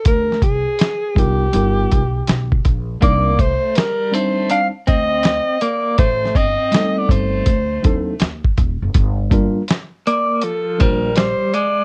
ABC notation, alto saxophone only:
X:1
M:4/4
L:1/16
Q:"Swing 16ths" 1/4=81
K:Gm
V:1 name="Alto saxophone"
B2 _A4 G8 z2 | d2 c2 B2 c2 f2 e4 d2 | c2 e3 d c6 z4 | z6 d2 A2 B2 c2 d2 |]